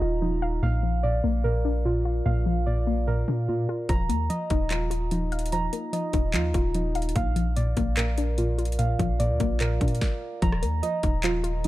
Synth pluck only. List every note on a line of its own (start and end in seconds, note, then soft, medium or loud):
0.00 0.21 F3 medium
0.00 0.22 A#3 medium
0.00 0.63 D#4 medium
0.00 0.63 F4 medium
0.22 0.63 F3 medium
0.42 0.63 F5 medium
0.63 1.03 A#2 medium
0.83 1.85 F3 medium
1.04 1.43 A#2 medium
1.24 2.26 A#3 medium
1.44 1.84 A#2 medium
1.65 2.67 D4 medium
1.85 2.24 A#2 medium
2.05 3.07 F4 medium
2.26 2.66 A#2 loud
2.46 3.48 F3 medium
2.67 3.06 A#2 medium
2.87 3.89 A#3 medium
3.08 3.47 A#2 medium
3.28 3.89 D4 medium
3.49 3.89 A#2 medium
3.69 3.89 F4 medium
3.89 4.29 F3 medium
4.09 5.11 A#3 medium
4.30 4.69 F3 medium
4.51 5.53 D#4 medium
4.71 5.10 F3 medium
4.91 5.93 F4 medium
5.12 5.51 F3 medium
5.32 6.34 F5 medium
5.52 5.92 F3 medium
5.73 6.75 A#3 medium
5.93 6.32 F3 medium
6.14 7.16 D#4 medium
6.34 6.74 F3 medium
6.55 7.16 F4 medium
6.75 7.16 F3 medium
6.95 7.16 F5 medium
7.16 7.56 A#2 medium
7.36 8.38 F3 medium
7.57 7.96 A#2 medium
7.77 8.79 A#3 medium
7.97 8.37 A#2 medium
8.18 9.20 D4 medium
8.38 8.77 A#2 medium
8.58 9.60 F4 medium
8.79 9.18 A#2 loud
8.99 10.01 F3 medium
9.20 9.59 A#2 medium
9.40 10.42 A#3 medium
9.61 10.42 A#2 medium
9.81 10.42 D4 medium
10.42 10.82 F3 loud
10.62 11.65 A#3 medium
10.83 11.22 F3 medium
11.04 11.68 D#4 medium
11.24 11.64 F3 medium
11.44 11.68 F4 medium